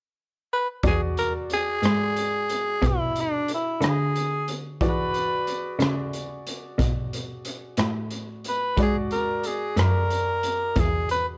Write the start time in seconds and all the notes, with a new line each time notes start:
0.53 B4
0.83 E2 F#4 G#4 D5, kick, closed hi-hat
0.88 G#4
1.17 A#4, closed hi-hat
1.50 G#4, closed hi-hat
1.82 G#2, cross-stick, closed hi-hat
2.16 closed hi-hat
2.49 closed hi-hat
2.82 B2, kick, closed hi-hat
2.87 E4
3.16 closed hi-hat
3.21 D4
3.48 closed hi-hat
3.54 E4
3.81 D3, cross-stick, closed hi-hat
3.89 G#4
4.15 closed hi-hat
4.48 closed hi-hat
4.81 E3 F#4 G#4 D5, kick, closed hi-hat
4.88 B4
5.14 closed hi-hat
5.47 closed hi-hat
5.79 C#3, cross-stick, closed hi-hat
6.13 closed hi-hat
6.47 closed hi-hat
6.79 B2, kick, closed hi-hat
7.13 closed hi-hat
7.45 closed hi-hat
7.77 A2, cross-stick, closed hi-hat
8.11 closed hi-hat
8.44 closed hi-hat
8.49 B4
8.77 G#2 F#4 G#4 D5, kick, closed hi-hat
8.82 G#4
9.11 A#4, closed hi-hat
9.43 G#4, closed hi-hat
9.77 F#2 A#4, cross-stick, closed hi-hat
10.11 closed hi-hat
10.43 closed hi-hat
10.76 E2 G#4, kick, closed hi-hat
11.09 B4, closed hi-hat